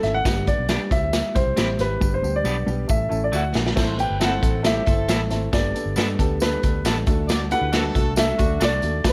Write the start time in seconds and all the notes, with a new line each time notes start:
0.03 G#1 A3 C#4 E4 A4 E5, snare, closed hi-hat, tambourine
0.14 F#5
0.25 G1 G3 B3 D4 G4, kick, snare, closed hi-hat, tambourine
0.47 G3 B3 D4 G4 D5, kick, closed hi-hat, tambourine
0.59 B1
0.68 G3 B3 D4 G4, snare, closed hi-hat, tambourine
0.91 C2 G3 C4 E4 F#4 E5, kick, closed hi-hat, tambourine
0.97 G4
1.02 D2
1.13 snare, closed hi-hat, tambourine
1.35 C2 G3 C4 E4 G4 C5, kick, closed hi-hat, tambourine
1.46 C2
1.56 A1 G3 C4 E4 G4, snare, closed hi-hat, tambourine
1.78 G#1 G3 C4 E4 G4 B4, snare, closed hi-hat, tambourine
2.00 G1 G3 B3 D4 G4, kick, tambourine
2.14 C5
2.22 D2 G3 B3 D4 G4, tambourine
2.36 D5
2.44 B1 G3 B3 D4 G4, tambourine
2.66 B1 G3 B3 D4 G4, tambourine
2.88 A1 A3 C#4 E4 A4 E5, kick, tambourine
3.09 A1 A3 C#4 E4 A4, tambourine
3.24 D5
3.32 D2 A3 D4 E4 F#4, tambourine
3.36 F#5
3.54 A#1 A3 D4 E4 F#4, snare, tambourine
3.67 snare
3.76 A1 A3 C4 E4 A4 C5, kick, snare, crash, tambourine
3.97 A3 C4 E4 G4 B4 G5, closed hi-hat, tambourine
4.10 G1
4.19 A3 C4 E4 A4, snare, closed hi-hat, tambourine
4.24 F#5
4.41 A1 A3 C4 E4 A4, kick, closed hi-hat, tambourine
4.63 A3 C4 E4 G4 A4 E5, snare, closed hi-hat, tambourine
4.85 G1 A3 C4 E4 A4, kick, closed hi-hat, tambourine
5.08 A1 A3 C4 E4 A4, snare, closed hi-hat, tambourine
5.30 G#1 A3 C4 E4 A4, snare, closed hi-hat, tambourine
5.52 G1 B3 D4 G4 A4 D5, kick, snare, closed hi-hat, tambourine
5.74 B3 D4 G4 A4, closed hi-hat, tambourine
5.86 G1
5.96 G2 B3 D4 G4 A4, snare, closed hi-hat, tambourine
6.18 D2 B3 D4 G4 A4, kick, closed hi-hat, tambourine
6.40 B3 D4 G4 A4 B4, snare, closed hi-hat, tambourine
6.63 D2 B3 D4 G4 A4, kick, closed hi-hat, tambourine
6.84 A1 B3 D4 G4 A4, snare, closed hi-hat, tambourine
7.07 D2 A3 D4 F#4 A4, kick, closed hi-hat, tambourine
7.28 F#4 A4 D5, snare, closed hi-hat, tambourine
7.50 A3 D4 E4 F#4 G4 A4 B4 F#5, closed hi-hat, tambourine
7.61 D2
7.72 A3 D4 F#4 A4 B4, snare, closed hi-hat, tambourine
7.95 C2 A3 D4 F#4 A4, kick, closed hi-hat, tambourine
8.16 A3 D4 F#4 A4 E5, snare, closed hi-hat, tambourine
8.37 D2 A3 D4 F#4 A4, kick, closed hi-hat, tambourine
8.60 C2 A3 D4 F#4 A4, snare, closed hi-hat, tambourine
8.64 D5
8.82 D#2 A3 D4 F#4 A4, closed hi-hat, tambourine
9.04 D2 A3 D4 F#4 B4, kick, snare, closed hi-hat, tambourine